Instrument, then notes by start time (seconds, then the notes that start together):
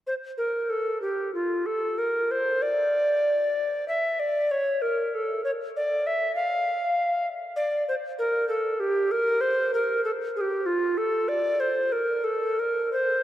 recorder
0.07 C5
0.38 A#4
0.70 A4
1.02 G4
1.35 F4
1.66 A4
1.98 A#4
2.31 C5
2.62 D5
3.88 E5
4.20 D5
4.51 C#5
4.82 A#4
5.15 A4
5.44 C#5
5.77 D5
6.07 E5
6.35 F5
7.56 D5
7.88 C5
8.19 A#4
8.48 A4
8.80 G4
9.11 A#4
9.41 C5
9.74 A#4
10.04 A4
10.36 G#4
10.41 G4
10.66 F4
10.98 A4
11.28 D5
11.60 C5
11.92 A#4
12.24 A4
12.59 A#4
12.93 C5